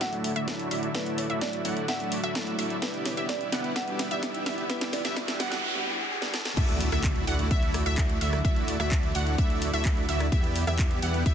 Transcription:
Already playing: D3 F#3 A3 E4 A4, riser
0.01 E4 F#4 E5 F#5, kick, snare, closed hi-hat
0.12 F#3 A3 D4 F#4, closed hi-hat
0.24 open hi-hat
0.36 A3 E4 F#4 D5 E5, closed hi-hat
0.47 F#3 A3 D4 E4, kick, snare, closed hi-hat
0.59 closed hi-hat
0.71 A3 E4 F#4 D5 E5, open hi-hat
0.83 closed hi-hat
0.94 F#3 A3 D4 E4 B4 D5 E5, kick, snare, closed hi-hat
1.06 closed hi-hat
1.18 C#5, open hi-hat
1.29 F#3 A3 D4 E4 F#4 D5 E5, closed hi-hat
1.41 D5, kick, snare, closed hi-hat
1.53 closed hi-hat
1.64 F#3 A3 D4 E4 F#4 D5 E5 F#5, open hi-hat
1.77 closed hi-hat
1.88 A3 E4 E5 F#5, kick, snare, closed hi-hat
1.99 F#3 A3 D4 F#4, closed hi-hat
2.12 open hi-hat
2.23 A3 E4 F#4 D5 E5, closed hi-hat
2.35 F#3 A3 D4 E4, kick, snare, closed hi-hat
2.47 closed hi-hat
2.59 A3 E4 F#4 D5 E5, open hi-hat
2.70 closed hi-hat
2.82 G3 B3 D4 E4 G4 B4 D5 E5, kick, snare, closed hi-hat
2.94 closed hi-hat
3.06 C#5, snare, open hi-hat
3.17 G3 B3 D4 E4 G4 D5 E5, closed hi-hat
3.29 D5, kick, snare, closed hi-hat
3.41 closed hi-hat
3.52 G3 B3 D4 E4 G4 D5 E5 F#5, snare, open hi-hat
3.64 closed hi-hat
3.76 B3 E4 G4 D5 E5 F#5, kick, snare, closed hi-hat
3.87 G3 B3 D4 F#4, closed hi-hat
3.99 snare, open hi-hat
4.11 B3 E4 G4 D5 E5, closed hi-hat
4.22 G3 B3 D4 E4, kick, snare, closed hi-hat
4.34 closed hi-hat
4.46 B3 E4 G4 D5 E5, snare, open hi-hat
4.58 closed hi-hat
4.69 G3 B3 D4 E4 G4 B4 D5 E5, kick, snare, closed hi-hat, noise sweep
4.81 snare, closed hi-hat
4.93 D5, snare, open hi-hat
5.04 G3 B3 D4 E4 G4 D5 E5, snare, closed hi-hat
5.16 E5, kick, snare, closed hi-hat
5.28 snare, closed hi-hat
5.39 G3 B3 D4 E4 G4 D5 F#5, snare, open hi-hat
5.52 snare, closed hi-hat
5.74 G3 B3 D4 F#4
5.86 G3 B3 D4 E4
6.21 G3 B3 D4 E4, snare
6.34 snare
6.45 snare
6.57 D2 D3 F#3 A3 E4 F#4 D5 E5, kick, closed hi-hat, crash, impact
6.69 closed hi-hat
6.81 open hi-hat
6.92 D2 A3 E4 F#4 D5 E5, cross-stick, closed hi-hat
7.04 kick, clap, closed hi-hat
7.16 closed hi-hat
7.27 D2 A3 E4 F#4 D5 F#5, open hi-hat
7.39 closed hi-hat
7.51 D2 A3 E4 F#4 D5 E5, kick, closed hi-hat
7.63 closed hi-hat
7.74 cross-stick, open hi-hat
7.86 D2 A3 E4 F#4 D5 E5, closed hi-hat
7.98 kick, clap, closed hi-hat
8.09 closed hi-hat
8.21 D2 A3 E4 F#4 D5 E5, open hi-hat
8.33 cross-stick, closed hi-hat
8.45 D2 A3 D4 E4 D5 E5, kick, closed hi-hat
8.56 closed hi-hat
8.68 open hi-hat
8.80 D2 A3 E4 F#4 D5 E5, cross-stick, closed hi-hat
8.91 kick, clap, closed hi-hat
9.03 closed hi-hat
9.15 D2 A3 E4 F#4 D5 F#5, open hi-hat
9.27 closed hi-hat
9.38 D2 A3 E4 F#4 D5 E5, kick, closed hi-hat
9.50 closed hi-hat
9.62 open hi-hat
9.73 D2 A3 E4 F#4 D5 E5, closed hi-hat
9.85 kick, clap, closed hi-hat
9.97 closed hi-hat
10.09 D2 A3 E4 F#4 D5 E5, open hi-hat
10.20 cross-stick, closed hi-hat
10.32 E2 G3 B3 E4 G4 D5 E5, kick, closed hi-hat
10.44 closed hi-hat
10.56 open hi-hat
10.67 E2 B3 E4 G4 D5 E5, cross-stick, closed hi-hat
10.79 kick, clap, closed hi-hat
10.91 closed hi-hat
11.02 E2 B3 E4 G4 D5 F#5, open hi-hat
11.14 closed hi-hat
11.26 E2 B3 E4 G4 D5 E5, kick, closed hi-hat

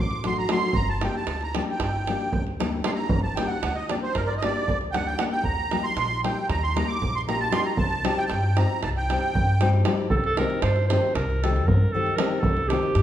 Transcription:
0.00 A1 D6
0.11 davul high
0.24 F#3 A3 D4 F#4 C6, davul high
0.37 A#5, davul high
0.49 F#3 A3 D4 F#4 C6, davul high
0.61 davul high
0.73 G1 A#5, davul low
0.89 A5
1.01 G3 A#3 D4 G4 G5, davul high
1.16 A5
1.27 D2, davul high
1.41 A#5, davul high
1.55 G3 A#3 D4 G4 A5, davul high
1.71 G5
1.80 G1, davul high, davul low
2.07 G3 A#3 D4 G4, davul high
2.21 davul high
2.33 D2, davul low
2.47 davul high
2.60 G3 A#3 D4 G4, davul high
2.72 davul high
2.84 G3 A#3 D4 G4 C6, davul high
2.95 A#5, davul high
3.09 G1, davul low
3.23 A5
3.36 G3 A#3 D4 G4 G5, davul high
3.47 F#5
3.62 D2, davul high
3.75 D#5, davul high
3.90 G3 A#3 D4 G4 D5, davul high
4.03 C5
4.15 G1 A#4, davul high, davul low
4.27 D5
4.37 D#5
4.43 G3 A#3 D4 G4 D5, davul high
4.56 davul high
4.68 D2, davul low
4.81 davul high
4.92 G3 A#3 D4 F#5 G5, davul high
4.96 G4
5.07 G5, davul high
5.18 G3 A#3 D4 G4 F#5, davul high
5.31 G5, davul high
5.44 D#2 A#5, davul low
5.71 G3 A#3 D#4 G4, davul high
5.84 C6
5.96 A#1, davul high
6.11 davul high
6.24 G3 A#3 D#4 G4 G5, davul high
6.49 D#2 A#5, davul high, davul low
6.63 C6
6.76 G3 A#3 D#4 G4 A#5, davul high
6.88 D6, davul high
7.02 A#1, davul low
7.15 C6, davul high
7.28 G3 A#3 D#4 G4 A#5, davul high
7.40 A5, davul high
7.51 G3 A#3 D#4 G4 C6, davul high
7.65 A#5, davul high
7.77 C2 A5, davul low
7.91 davul high
8.04 G3 C4 D#4 G4, davul high
8.17 G5, davul high
8.26 G5 A5, davul high
8.31 G2
8.44 davul high
8.57 G3 C4 D#4 G4 A#5, davul high
8.69 davul high
8.83 C2 A5, davul high, davul low
8.97 G5, davul high
9.10 G3 C4 D#4 G4, davul high
9.35 G2, davul low
9.48 davul high
9.61 G3 C4 D#4 G4, davul high
9.73 davul high
9.85 G3 C4 D#4 G4, davul high
9.98 davul high
10.10 C2 A4, davul low
10.17 A4
10.24 A4, davul high
10.37 D#3 G3 C4 D#4 G4 A#4, davul high
10.50 davul high
10.62 G2 C5, davul high
10.76 davul high
10.88 D#3 G3 C4 C5, davul high
10.92 D#4 G4
11.14 C2 A#4, davul high, davul low
11.30 davul high
11.43 D#3 G3 C4 D#4 G4 A4, davul high
11.56 davul high
11.67 G2 A#4, davul low
11.93 D#3 G3 C4 D#4 G4 A4
12.06 davul high
12.16 D#3 G3 C4 D#4 G4 A#4, davul high
12.41 C2 A4, davul low
12.57 davul high
12.68 D#3 G3 C4 G4, davul high
12.72 D#4 G4
12.83 davul high
12.95 G2, davul high

